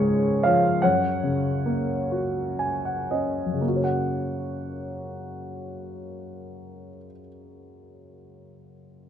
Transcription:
Already playing: C#2 G#2 C#3 G#3 F4 G#4 A#4 C#5
0.43 F3 C#5 F5
0.82 F#2 C#5 F#5
1.23 C#3
1.66 A#3
2.12 F#4
2.59 G#5
2.85 F#5
3.11 C#4 D#5
3.46 F#2
3.54 C#3
3.61 A#3
3.68 F#4
3.76 C#5
3.84 F#5

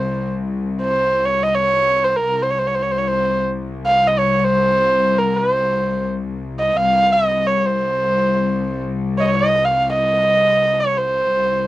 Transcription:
Already playing: C2 C5
0.82 C5
1.25 C#5
1.43 D#5
1.55 C#5
2.04 C5
2.16 A#4
2.25 C2
2.42 C5
2.50 C#5
2.58 C5
2.67 C#5
2.75 C5
2.82 C#5
2.92 C5
2.98 C#5
3.08 C5
3.86 F5
4.08 D#5
4.19 C#5
4.44 C5
5.18 A#4
5.37 C5
6.59 D#5
6.77 C2 F5
7.13 D#5
7.47 C#5
7.66 C5
9.18 C#5 D#5
9.27 C#5
9.35 D#5
9.65 F5
9.93 D#5
10.80 C#5
10.98 C5
11.34 C2

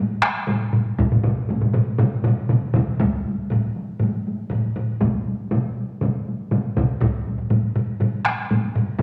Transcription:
0.10 taiko high
0.22 taiko rim, taiko high
0.36 taiko high
0.47 taiko low-mid, taiko high
0.61 taiko high
0.73 taiko low-mid, taiko high
0.87 taiko high
0.99 taiko, taiko low-mid, taiko mid, taiko high
1.12 taiko low-mid, taiko mid, taiko high
1.23 taiko low-mid, taiko mid, taiko high
1.38 taiko high
1.49 taiko low-mid, taiko mid, taiko high
1.61 taiko low-mid, taiko mid, taiko high
1.74 taiko low-mid, taiko mid, taiko high
1.88 taiko high
1.99 taiko low-mid, taiko mid, taiko high
2.14 taiko high
2.24 taiko low-mid, taiko mid, taiko high
2.39 taiko high
2.49 taiko low-mid, taiko mid, taiko high
2.64 taiko high
2.74 taiko, taiko low-mid, taiko mid, taiko high
2.90 taiko high
3.00 taiko, taiko low-mid, taiko high
3.15 taiko high
3.28 taiko high
3.41 taiko high
3.50 taiko low-mid, taiko high
3.76 taiko high
3.89 taiko high
4.00 taiko low-mid, taiko high
4.15 taiko high
4.28 taiko high
4.40 taiko high
4.50 taiko low-mid, taiko high
4.66 taiko high
4.76 taiko low-mid, taiko high
4.90 taiko high
5.01 taiko, taiko mid, taiko high
5.16 taiko high
5.28 taiko high
5.40 taiko high
5.51 taiko mid, taiko high
5.77 taiko high
5.91 taiko high
6.01 taiko mid, taiko high
6.16 taiko high
6.28 taiko high
6.40 taiko high
6.51 taiko mid, taiko high
6.77 taiko, taiko mid, taiko high
6.90 taiko high
7.01 taiko, taiko low-mid, taiko high
7.15 taiko high
7.27 taiko high
7.38 taiko low-mid, taiko high
7.50 taiko low-mid, taiko high
7.76 taiko low-mid, taiko high
7.89 taiko high
8.00 taiko low-mid, taiko high
8.14 taiko high
8.25 taiko rim, taiko high
8.39 taiko high
8.50 taiko low-mid, taiko high
8.63 taiko high
8.75 taiko low-mid, taiko high
8.88 taiko high
8.99 taiko

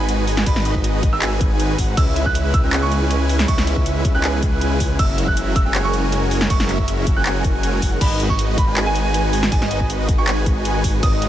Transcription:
Already playing: G#1 G#3 D#4 F#4 B4 G#5 B5
0.09 closed hi-hat
0.27 open hi-hat
0.37 snare
0.46 G#1 G#3 D#4 F#4 B4 D#5 B5, kick, closed hi-hat, crash
0.56 snare
0.65 closed hi-hat
0.75 kick
0.84 closed hi-hat
1.03 kick, closed hi-hat
1.13 G#1 G#3 D#4 F#4 B4 G#5 E6
1.22 clap, closed hi-hat
1.41 kick, closed hi-hat
1.60 closed hi-hat
1.78 G#1 G#3 D#4 F#4 B4 F#5, kick, open hi-hat
1.97 C#2 C#3 G#3 B3 C#4 E4 B4 E5 E6, kick, closed hi-hat, crash
2.16 closed hi-hat
2.26 F#6, kick
2.35 closed hi-hat
2.54 E6, kick, closed hi-hat
2.64 C#2 G#3 C#4 E4 B4 G#5
2.73 clap, closed hi-hat
2.82 C#6
2.92 closed hi-hat
3.11 closed hi-hat
3.29 open hi-hat
3.39 snare
3.48 C#2 G#3 C#4 E4 B4 E5 C#6, kick, closed hi-hat, crash
3.58 snare
3.67 closed hi-hat
3.77 kick
3.86 closed hi-hat
4.05 kick, closed hi-hat
4.15 C#2 G#3 C#4 E4 B4 G#5 F#6
4.24 clap, closed hi-hat
4.43 kick, closed hi-hat
4.61 closed hi-hat
4.80 kick, open hi-hat
4.99 F#1 F#3 G#3 C#4 E4 F#4 G#4 A#4 E5 E6, kick, closed hi-hat, crash
5.18 closed hi-hat
5.28 F#6, kick
5.37 closed hi-hat
5.56 E6, kick, closed hi-hat
5.65 F#1 G#3 C#4 F#4 A#4 G#5
5.75 clap, closed hi-hat
5.84 C#6
5.94 closed hi-hat
6.12 closed hi-hat
6.31 open hi-hat
6.41 snare
6.50 F#1 G#3 C#4 F#4 A#4 E5 C#6, kick, closed hi-hat, crash
6.60 snare
6.69 clap, closed hi-hat
6.79 kick
6.88 closed hi-hat
7.07 kick, closed hi-hat
7.16 F#1 G#3 C#4 F#4 A#4 G#5 F#6
7.26 clap, closed hi-hat
7.44 kick, closed hi-hat
7.63 closed hi-hat
7.82 F#1 G#3 C#4 F#4 A#4 F#5, kick, open hi-hat
8.01 G#1 G#3 D#4 F#4 B4 D#5 B5, kick, closed hi-hat, crash
8.20 closed hi-hat
8.30 C#6, kick
8.39 closed hi-hat
8.58 B5, kick, closed hi-hat
8.67 G#1 G#3 D#4 F#4 B4 G#5
8.77 clap, closed hi-hat
8.86 G#5
8.95 closed hi-hat
9.14 closed hi-hat
9.33 open hi-hat
9.43 snare
9.52 G#1 G#3 D#4 F#4 B4 D#5 G#5, kick, closed hi-hat, crash
9.62 snare
9.71 closed hi-hat
9.81 kick
9.90 closed hi-hat
10.09 kick, closed hi-hat
10.18 G#1 G#3 D#4 F#4 B4 G#5 C#6
10.27 clap, closed hi-hat
10.46 kick, closed hi-hat
10.65 closed hi-hat
10.84 kick, open hi-hat
11.03 G#1 G#3 D#4 F#4 B4 D#5 D#6, kick, closed hi-hat, crash
11.22 closed hi-hat

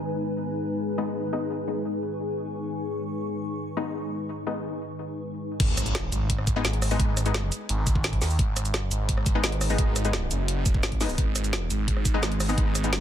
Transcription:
Already playing: G#3 D#4 B4 G#5 B5
0.02 G#4
0.98 G#3 B3 D#4
1.02 C#6
1.33 G#3 B3 D#4
1.67 G#3 B3 D#4
3.77 G#3 B3 D#4
4.47 G#3 B3 D#4
5.60 G#1, kick, closed hi-hat, crash, impact
5.77 cross-stick, closed hi-hat, shaker
5.86 closed hi-hat, shaker
5.95 snare, closed hi-hat
6.12 G#1, closed hi-hat, shaker
6.30 kick, closed hi-hat
6.38 cross-stick
6.47 kick, closed hi-hat, shaker
6.56 G#3 B3 D#4
6.65 snare, closed hi-hat, shaker
6.73 closed hi-hat
6.82 cross-stick, open hi-hat, shaker
6.91 G#3 B3 D#4, shaker
7.00 kick, closed hi-hat
7.17 cross-stick, closed hi-hat, shaker
7.26 G#3 B3 D#4, closed hi-hat, shaker
7.34 snare, closed hi-hat
7.52 closed hi-hat, shaker
7.69 G#1, closed hi-hat
7.87 kick, closed hi-hat, shaker
7.95 kick
8.04 snare, closed hi-hat, shaker
8.13 kick, closed hi-hat
8.22 D#2, snare, open hi-hat, shaker
8.30 shaker
8.39 G#1, kick, closed hi-hat
8.56 cross-stick, closed hi-hat, shaker
8.65 closed hi-hat, shaker
8.74 snare, closed hi-hat
8.91 G#1, closed hi-hat, shaker
9.09 kick, closed hi-hat
9.17 cross-stick
9.26 kick, closed hi-hat, shaker
9.35 G#3 B3 D#4
9.44 snare, closed hi-hat, shaker
9.52 closed hi-hat
9.61 cross-stick, open hi-hat, shaker
9.70 G#3 B3 D#4, shaker
9.78 kick, closed hi-hat
9.96 cross-stick, closed hi-hat, shaker
10.05 G#3 B3 D#4, closed hi-hat, shaker
10.13 snare, closed hi-hat
10.31 F#1, closed hi-hat, shaker
10.48 closed hi-hat
10.66 kick, closed hi-hat, shaker
10.74 kick
10.83 G#1, snare, closed hi-hat, shaker
10.92 kick, closed hi-hat
11.01 G#3 B3 D#4, snare, open hi-hat, shaker
11.09 shaker
11.18 G#1, kick, closed hi-hat
11.36 cross-stick, closed hi-hat, shaker
11.44 closed hi-hat, shaker
11.53 snare, closed hi-hat
11.70 G#1, closed hi-hat, shaker
11.88 kick, closed hi-hat
11.97 cross-stick
12.05 kick, closed hi-hat, shaker
12.14 G#3 B3 D#4
12.23 snare, closed hi-hat, shaker
12.32 closed hi-hat
12.40 cross-stick, open hi-hat, shaker
12.49 G#3 B3 D#4, shaker
12.58 G#1, kick, closed hi-hat
12.75 cross-stick, closed hi-hat, shaker
12.84 G#3 B3 D#4, closed hi-hat, shaker
12.93 snare, closed hi-hat

